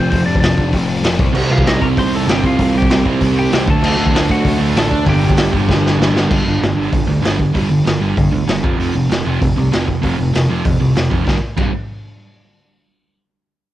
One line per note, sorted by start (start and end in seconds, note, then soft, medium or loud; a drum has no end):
0.00 0.11 F1 medium
0.00 1.01 F2 medium
0.00 1.03 C3 loud
0.00 1.04 F3 loud
0.00 1.04 A3 loud
0.00 0.11 C4 medium
0.00 1.06 C4 loud
0.10 0.26 F1 medium
0.10 0.26 C4 medium
0.10 0.25 C5 medium
0.10 kick loud
0.10 open hi-hat medium
0.26 0.41 F1 medium
0.26 0.41 D4 medium
0.26 0.39 D5 medium
0.35 kick medium
0.40 0.57 F1 loud
0.40 0.71 D4 medium
0.40 0.70 D5 medium
0.40 snare loud
0.40 open hi-hat medium
0.57 0.72 F1 medium
0.57 1.20 F2 medium
0.57 1.17 C3 medium
0.57 1.18 F3 medium
0.57 kick medium
0.73 1.03 F1 medium
0.73 kick loud
0.73 open hi-hat medium
1.03 1.18 F1 medium
1.03 1.18 F2 medium
1.03 1.16 C3 medium
1.03 1.18 F3 medium
1.03 1.19 A3 medium
1.03 snare loud
1.03 open hi-hat medium
1.07 1.20 C4 loud
1.17 1.34 C2 medium
1.17 2.26 C3 loud
1.17 2.26 G3 loud
1.17 2.27 C4 loud
1.17 2.27 D#4 loud
1.17 kick loud
1.33 1.49 C2 loud
1.33 1.79 C3 loud
1.33 1.80 G3 medium
1.33 1.79 C4 loud
1.33 crash loud
1.50 1.64 C2 medium
1.50 1.66 F4 medium
1.50 1.67 F5 medium
1.58 kick medium
1.65 1.80 C2 loud
1.65 1.81 D#4 medium
1.65 1.82 D#5 medium
1.65 snare loud
1.65 open hi-hat medium
1.80 1.96 C2 medium
1.80 2.41 C3 medium
1.80 2.25 C3 medium
1.80 2.42 G3 medium
1.80 2.27 G3 medium
1.80 2.41 C4 medium
1.80 2.26 C4 loud
1.80 1.88 A#4 medium
1.80 1.87 A#5 loud
1.80 kick loud
1.97 2.26 C2 medium
1.97 2.12 C5 medium
1.97 2.16 C6 loud
1.97 kick loud
1.97 open hi-hat medium
2.15 2.28 A4 medium
2.15 2.30 A5 loud
2.27 2.42 G1 loud
2.27 2.41 C3 medium
2.27 2.43 G3 medium
2.27 2.43 C4 medium
2.27 2.44 D#4 medium
2.27 2.43 G4 medium
2.27 2.45 G5 loud
2.27 snare loud
2.27 open hi-hat medium
2.42 2.58 C2 medium
2.42 3.50 C3 medium
2.42 3.50 G3 loud
2.42 3.51 C4 loud
2.42 3.52 D#4 loud
2.42 kick loud
2.47 2.74 F4 medium
2.47 2.77 F5 medium
2.57 2.74 C2 medium
2.57 3.03 C3 medium
2.57 3.04 G3 loud
2.57 3.03 C4 loud
2.57 kick loud
2.57 open hi-hat medium
2.74 2.89 C2 medium
2.74 3.05 G5 medium
2.78 3.05 G4 medium
2.78 kick medium
2.90 3.04 C2 loud
2.90 snare loud
2.90 open hi-hat medium
3.04 3.20 C2 medium
3.04 3.49 C3 medium
3.04 3.50 G3 medium
3.04 3.66 G3 medium
3.04 3.50 C4 medium
3.04 3.67 C4 medium
3.04 kick loud
3.08 3.65 C3 medium
3.21 3.50 C2 medium
3.21 kick loud
3.21 open hi-hat medium
3.39 3.67 G4 medium
3.39 3.69 G5 loud
3.51 3.66 C2 loud
3.51 3.65 C3 medium
3.51 3.66 G3 loud
3.51 3.67 C4 medium
3.51 3.67 D#4 medium
3.51 snare loud
3.51 open hi-hat medium
3.65 3.81 D2 medium
3.65 4.72 D3 medium
3.65 4.73 F#3 medium
3.65 4.74 A3 loud
3.65 4.76 D4 loud
3.65 kick loud
3.70 4.26 A4 medium
3.70 4.31 A5 loud
3.82 3.97 D2 loud
3.82 crash loud
3.97 4.12 D2 medium
4.06 kick medium
4.12 4.27 D2 loud
4.12 4.58 D3 medium
4.12 4.58 A3 medium
4.12 4.57 D4 medium
4.12 open hi-hat medium
4.16 snare loud
4.28 4.44 D2 medium
4.28 4.90 D3 medium
4.28 4.90 A3 medium
4.28 6.80 D4 medium
4.28 4.59 F#5 loud
4.28 kick loud
4.32 4.59 F#4 medium
4.45 4.74 D2 loud
4.45 kick loud
4.45 open hi-hat medium
4.58 4.90 D3 medium
4.58 4.90 A3 medium
4.58 8.08 D4 loud
4.73 4.90 A1 loud
4.73 4.89 D3 medium
4.73 4.89 F#3 medium
4.73 4.90 A3 medium
4.73 5.08 D4 loud
4.73 snare loud
4.73 open hi-hat medium
4.77 5.06 A4 medium
4.77 5.08 A5 loud
4.91 5.06 D2 medium
4.91 kick medium
5.04 5.21 G1 loud
5.04 6.13 G2 loud
5.04 6.14 D3 loud
5.04 6.14 G3 loud
5.04 6.13 A#3 loud
5.04 6.11 D4 loud
5.04 kick loud
5.04 open hi-hat medium
5.09 5.96 G4 medium
5.09 5.96 G5 medium
5.22 5.37 G1 medium
5.29 kick medium
5.37 5.52 G1 loud
5.37 snare loud
5.37 open hi-hat medium
5.51 5.68 G1 medium
5.51 5.97 G2 medium
5.51 5.98 D3 medium
5.51 5.98 G3 loud
5.51 kick medium
5.67 5.98 G1 loud
5.67 6.29 G2 medium
5.67 6.30 D3 medium
5.67 6.30 G3 loud
5.67 kick loud
5.67 snare medium
5.86 snare medium
5.98 6.13 G1 medium
5.98 6.27 G2 medium
5.98 6.28 D3 medium
5.98 6.28 G3 medium
6.02 snare loud
6.13 6.29 G1 medium
6.13 6.28 G2 medium
6.13 6.28 D3 medium
6.13 6.29 G3 medium
6.13 6.29 A#3 medium
6.13 6.28 D4 medium
6.13 snare loud
6.29 6.41 G1 medium
6.29 6.43 G2 medium
6.29 6.43 D3 medium
6.29 6.45 G3 medium
6.29 kick loud
6.29 crash loud
6.44 6.57 G1 medium
6.44 6.59 G2 medium
6.44 6.59 D3 medium
6.61 6.73 G1 medium
6.61 6.74 G2 medium
6.61 6.75 D3 medium
6.61 snare loud
6.61 open hi-hat medium
6.75 6.88 G1 medium
6.75 6.90 G2 medium
6.75 6.91 D3 medium
6.75 6.91 G3 loud
6.92 7.04 G1 medium
6.92 7.06 G2 medium
6.92 7.06 D3 medium
6.92 kick loud
6.92 open hi-hat medium
7.07 7.18 D2 medium
7.07 7.20 G2 medium
7.07 7.21 D3 medium
7.22 7.44 G1 medium
7.22 7.37 G2 medium
7.22 7.37 D3 loud
7.22 7.38 G3 medium
7.22 open hi-hat medium
7.26 snare loud
7.38 7.51 G2 medium
7.38 7.52 D3 medium
7.38 kick medium
7.53 7.66 G1 medium
7.53 7.68 G2 medium
7.53 7.68 D3 medium
7.53 7.69 G3 medium
7.53 kick loud
7.53 open hi-hat medium
7.69 7.81 G1 medium
7.69 7.83 G2 medium
7.69 7.83 D3 medium
7.84 7.96 G1 medium
7.84 7.99 G2 medium
7.84 7.99 D3 medium
7.84 snare loud
7.84 open hi-hat medium
8.00 8.12 G1 medium
8.00 8.14 G2 medium
8.00 8.14 D3 medium
8.00 8.16 G3 medium
8.15 8.30 G2 medium
8.15 8.28 G2 medium
8.15 8.30 D3 medium
8.15 kick loud
8.15 open hi-hat medium
8.31 8.43 D2 medium
8.31 8.45 G2 medium
8.31 8.46 D3 medium
8.47 8.64 G1 medium
8.47 8.61 G2 medium
8.47 8.61 D3 medium
8.47 snare loud
8.47 open hi-hat medium
8.62 8.75 F1 medium
8.62 8.75 F2 medium
8.62 8.76 C3 medium
8.62 8.77 F3 medium
8.62 kick loud
8.77 8.90 F1 medium
8.77 8.92 F2 medium
8.77 8.93 C3 medium
8.77 8.93 F3 medium
8.77 open hi-hat medium
8.94 9.06 F1 medium
8.94 9.08 F2 medium
8.94 9.08 C3 medium
9.09 9.21 F1 medium
9.09 9.23 F2 medium
9.09 9.24 C3 medium
9.09 snare loud
9.09 open hi-hat medium
9.25 9.37 F1 medium
9.25 9.40 F2 medium
9.25 9.40 C3 medium
9.25 9.40 F3 loud
9.41 9.52 F1 medium
9.41 9.55 F2 medium
9.41 9.55 C3 medium
9.41 kick loud
9.41 open hi-hat medium
9.57 9.68 C2 medium
9.57 9.70 F2 medium
9.57 9.70 C3 medium
9.71 9.94 F1 medium
9.71 9.86 F2 medium
9.71 9.86 C3 medium
9.71 9.87 F3 medium
9.71 snare loud
9.71 open hi-hat medium
9.87 10.01 F2 medium
9.87 10.01 C3 medium
9.87 kick medium
10.02 10.14 F1 medium
10.02 10.16 F2 medium
10.02 10.16 C3 medium
10.02 10.17 F3 medium
10.02 kick medium
10.02 open hi-hat medium
10.17 10.30 F1 medium
10.17 10.32 F2 medium
10.17 10.32 C3 medium
10.33 10.46 F1 medium
10.33 10.47 F2 medium
10.33 10.47 C3 medium
10.33 snare loud
10.33 open hi-hat soft
10.49 10.61 F1 medium
10.49 10.64 F2 medium
10.49 10.64 C3 medium
10.49 10.64 F3 medium
10.65 10.78 F2 medium
10.65 10.76 F2 medium
10.65 10.79 C3 medium
10.65 kick loud
10.65 open hi-hat medium
10.79 10.92 C2 medium
10.79 10.94 F2 medium
10.79 10.94 C3 medium
10.95 11.08 F1 medium
10.95 11.10 F2 medium
10.95 11.10 C3 medium
10.95 snare loud
10.95 open hi-hat soft
11.11 11.23 F1 medium
11.11 11.25 F2 medium
11.11 11.26 C3 medium
11.11 11.26 F3 medium
11.11 kick medium
11.26 11.36 G1 medium
11.26 11.36 G2 medium
11.26 11.36 D3 medium
11.26 11.36 G3 medium
11.26 11.36 A#3 medium
11.26 11.36 D4 medium
11.26 kick loud
11.26 snare medium
11.57 11.72 G1 medium
11.57 11.70 G2 medium
11.57 11.70 D3 medium
11.57 11.71 G3 medium
11.57 11.71 A#3 loud
11.57 11.71 D4 medium
11.57 kick medium
11.57 crash medium